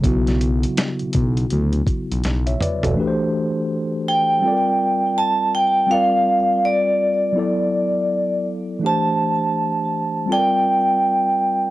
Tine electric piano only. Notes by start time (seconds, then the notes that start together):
0.01 C#3 F#3 B3
0.06 E4 F#4
2.47 C#5 E5
2.61 B4 D5
2.84 F#4 A4
2.94 E3 A3 D4
2.99 G4 B4
3.07 C5
4.40 G3 C4 F4
4.46 A4 D5
4.52 A#4
5.87 G3 C4 F4
5.92 A#4 D5
7.32 F#3 B3 E4
7.38 A4 D5
8.79 E3 A3 D4
8.85 G4 C5
10.26 G3 C4 F4
10.31 A4 D5
10.38 A#4